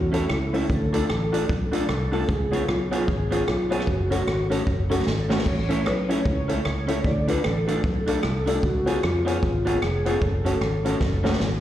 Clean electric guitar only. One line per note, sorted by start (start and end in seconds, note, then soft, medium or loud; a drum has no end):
0.12 0.23 C#4 medium
0.12 0.24 E4 medium
0.12 0.24 A4 loud
0.12 0.24 C#5 loud
0.53 0.64 C#4 medium
0.53 0.64 E4 medium
0.53 0.64 A4 medium
0.53 0.65 C#5 medium
0.93 1.03 D4 medium
0.93 1.04 F4 medium
0.93 1.04 A4 loud
0.93 1.04 D5 medium
1.33 1.43 D4 medium
1.33 1.44 F4 medium
1.33 1.44 A4 medium
1.33 1.44 D5 loud
1.72 1.83 D4 medium
1.72 1.83 F4 medium
1.72 1.84 A4 medium
1.72 1.84 D5 loud
2.12 2.22 D4 medium
2.12 2.23 F4 medium
2.12 2.23 A4 medium
2.12 2.23 D5 medium
2.51 2.62 B3 medium
2.51 2.62 F4 medium
2.51 2.63 G#4 medium
2.51 2.63 C#5 medium
2.91 3.02 B3 medium
2.91 3.02 F4 medium
2.91 3.03 G#4 medium
2.91 3.03 C#5 loud
3.09 muted clean electric guitar stroke soft
3.31 3.41 B3 medium
3.31 3.42 F4 medium
3.31 3.42 G#4 medium
3.31 3.42 C#5 medium
3.70 3.81 B3 medium
3.70 3.81 F4 medium
3.70 3.82 G#4 loud
3.70 3.82 C#5 medium
4.10 4.21 C#4 medium
4.10 4.21 F#4 medium
4.10 4.22 A4 medium
4.10 4.22 C#5 medium
4.50 4.60 C#4 medium
4.50 4.61 F#4 medium
4.50 4.61 A4 medium
4.50 4.61 C#5 medium
4.90 5.00 C#4 medium
4.90 5.01 F#4 medium
4.90 5.01 A4 medium
4.90 5.01 C#5 medium
5.29 5.40 C#4 medium
5.29 5.40 F#4 medium
5.29 5.40 A4 medium
5.29 5.40 C#5 medium
5.69 5.79 C#4 medium
5.69 5.80 E4 medium
5.69 5.80 A4 medium
5.69 5.80 C#5 medium
6.09 6.19 C#4 medium
6.09 6.20 E4 medium
6.09 6.20 A4 medium
6.09 6.20 C#5 medium
6.48 6.59 C#4 medium
6.48 6.59 E4 medium
6.48 6.59 A4 medium
6.48 6.60 C#5 medium
6.87 6.98 C#4 medium
6.87 6.98 E4 medium
6.87 6.99 A4 medium
6.87 6.99 C#5 medium
7.28 7.38 D4 medium
7.28 7.39 F4 medium
7.28 7.39 A4 medium
7.28 7.39 D5 loud
7.68 7.78 D4 medium
7.68 7.78 F4 medium
7.68 7.78 A4 medium
7.68 7.79 D5 medium
8.07 8.17 D4 medium
8.07 8.18 F4 loud
8.07 8.18 A4 loud
8.07 8.18 D5 medium
8.46 8.57 D4 medium
8.46 8.57 F4 medium
8.46 8.57 A4 medium
8.46 8.57 D5 medium
8.86 8.97 B3 medium
8.86 8.97 F4 medium
8.86 8.97 G#4 medium
8.86 8.98 C#5 medium
9.25 9.36 B3 medium
9.25 9.36 F4 medium
9.25 9.37 G#4 medium
9.25 9.37 C#5 medium
9.65 9.76 B3 medium
9.65 9.76 F4 medium
9.65 9.76 G#4 medium
9.65 9.77 C#5 loud
10.06 10.16 B3 medium
10.06 10.16 F4 medium
10.06 10.17 G#4 medium
10.06 10.17 C#5 medium
10.45 10.55 C#4 medium
10.45 10.55 F#4 medium
10.45 10.56 A4 medium
10.45 10.56 C#5 medium
10.85 10.95 C#4 medium
10.85 10.95 F#4 medium
10.85 10.96 A4 loud
10.85 10.96 C#5 loud
11.24 11.34 C#4 medium
11.24 11.34 F#4 loud
11.24 11.35 A4 medium
11.24 11.35 C#5 loud